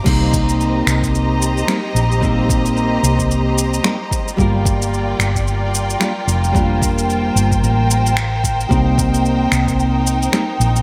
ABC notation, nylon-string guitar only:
X:1
M:4/4
L:1/8
Q:"Swing 16ths" 1/4=111
K:Cm
V:1 name="Nylon-string guitar"
[G,B,CEB]6 [G,B,CEB] z | [G,B,CEB]6 [G,B,CEB] z | [G,B,DFB]6 [G,B,DFB] z | [G,B,DFB]6 z2 |
[G,B,CEB]6 [G,B,CEB] z |]